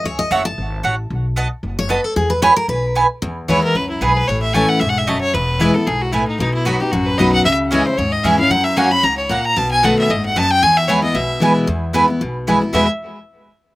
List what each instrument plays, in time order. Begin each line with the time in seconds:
0.04 upright bass C#2, steel-string acoustic guitar C#5
0.19 steel-string acoustic guitar D#5
0.31 upright bass F#1, mandolin A3 F#4 C#5 F#5, steel-string acoustic guitar E5
0.45 steel-string acoustic guitar A5
0.58 upright bass G#1
0.83 upright bass A1, mandolin A3 F#4 C#5 F#5
1.10 upright bass B1
1.36 mandolin B3 F#4 D#5 A5
1.63 upright bass F#1
1.79 steel-string acoustic guitar C#5
1.89 mandolin B3 F#4 D#5 A5, steel-string acoustic guitar B4
2.04 steel-string acoustic guitar A4
2.16 upright bass E2, steel-string acoustic guitar G#4
2.30 steel-string acoustic guitar B4
2.42 mandolin B3 E4 B4 G#5, steel-string acoustic guitar C#5
2.56 steel-string acoustic guitar A#4
2.68 upright bass B1, steel-string acoustic guitar B4
2.95 mandolin B3 E4 B4 G#5
3.22 steel-string acoustic guitar E2, upright bass E2
3.48 upright bass D#2, steel-string acoustic guitar E3 G#3 B3 E4, mandolin B3 E4 B4 G#5, fiddle C#5
3.63 fiddle A#4
3.75 upright bass C#2, steel-string acoustic guitar F#2, fiddle B4
3.89 fiddle E4
4.01 upright bass B1, steel-string acoustic guitar G#2, mandolin B3 E4 B4 G#5, fiddle G#4
4.16 fiddle B4
4.27 upright bass A1, steel-string acoustic guitar A2, fiddle C#5
4.42 fiddle E5
4.53 steel-string acoustic guitar E3 A3 C#4 E4, mandolin A3 E4 C#5 A5, fiddle G#5
4.68 fiddle F#5
4.80 upright bass E1, steel-string acoustic guitar G#2, fiddle E5
4.89 fiddle F#5
4.98 fiddle E5
5.07 steel-string acoustic guitar F#2, mandolin A3 E4 C#5 A5, fiddle D#5
5.21 fiddle C#5
5.33 upright bass E1, steel-string acoustic guitar E2, fiddle B4
5.59 steel-string acoustic guitar E3 G#3 B3 E4, mandolin B3 E4 B4 G#5
5.74 steel-string acoustic guitar B3 E4, fiddle A4
5.87 upright bass B1, steel-string acoustic guitar G#2, fiddle G#4
6.01 fiddle F#4
6.12 steel-string acoustic guitar A2, mandolin B3 E4 B4 G#5, fiddle E4
6.27 fiddle D#4
6.39 upright bass B1, steel-string acoustic guitar B2, fiddle D#4
6.54 fiddle E4
6.65 steel-string acoustic guitar F#3 B3 D#4 F#4, mandolin B3 F#4 D#5 B5, fiddle F#4
6.80 steel-string acoustic guitar D#4 F#4, fiddle G4
6.92 upright bass A1, steel-string acoustic guitar F#2, fiddle F#4
7.06 fiddle B4
7.18 upright bass B1, steel-string acoustic guitar F#3 B3 D#4 F#4, mandolin B3 F#4 D#5 B5, fiddle D#5
7.32 fiddle F#5
7.45 upright bass C#2, steel-string acoustic guitar C#3, fiddle E5
7.71 steel-string acoustic guitar E3 G#3 C#4 E4, mandolin C#4 G#4 E5 G#5, fiddle D#5
7.86 steel-string acoustic guitar C#4 E4, fiddle C5
7.98 upright bass D#2, steel-string acoustic guitar G#2, fiddle C#5
8.12 fiddle D#5
8.24 upright bass E2, steel-string acoustic guitar E3 G#3 C#4 E4, mandolin C#4 G#4 E5 G#5, fiddle E5
8.39 steel-string acoustic guitar C#4 E4, fiddle F5
8.50 upright bass F#2, steel-string acoustic guitar F#2, fiddle F#5
8.64 fiddle E5
8.77 steel-string acoustic guitar F#3 A#3 C#4 F#4, mandolin A#3 F#4 C#5 F#5, fiddle G#5
8.91 steel-string acoustic guitar C#4 F#4, fiddle B5
9.03 upright bass C#2, steel-string acoustic guitar G#2, fiddle A#5
9.18 fiddle C#5
9.29 steel-string acoustic guitar A#2, mandolin A#3 F#4 C#5 F#5, fiddle F#5
9.45 fiddle A#5
9.56 upright bass B1, steel-string acoustic guitar B2, fiddle A5
9.71 fiddle G#5
9.83 steel-string acoustic guitar D#3 A3 B3 F#4, mandolin B3 F#4 D#5 A5, fiddle F#5
9.99 fiddle E5
10.10 upright bass F#1, steel-string acoustic guitar G#2, fiddle D#5
10.25 fiddle F#5
10.36 steel-string acoustic guitar F#2, mandolin B3 F#4 D#5 A5, fiddle A5
10.50 fiddle G5
10.62 upright bass E2, steel-string acoustic guitar E2, fiddle G#5
10.77 fiddle E5
10.88 steel-string acoustic guitar E3 G#3 B3 E4, mandolin B3 E4 B4 G#5, fiddle C#5
11.02 steel-string acoustic guitar B3 E4, fiddle D#5
11.15 upright bass B1, steel-string acoustic guitar B2, fiddle E5
11.40 steel-string acoustic guitar E3 G#3 B3 E4, mandolin B3 E4 B4 G#5
11.67 steel-string acoustic guitar E2, upright bass E2
11.93 steel-string acoustic guitar E3 G#3 B3 E4, mandolin B3 E4 B4 G#5
12.08 steel-string acoustic guitar B3 E4
12.21 upright bass B1, steel-string acoustic guitar B2
12.47 steel-string acoustic guitar E3 G#3 B3 E4, mandolin B3 E4 B4 G#5
12.61 steel-string acoustic guitar B3 E4
12.73 steel-string acoustic guitar E2 B2 E3 G#3 B3 E4, upright bass E2, mandolin B3 E4 B4 G#5, fiddle E5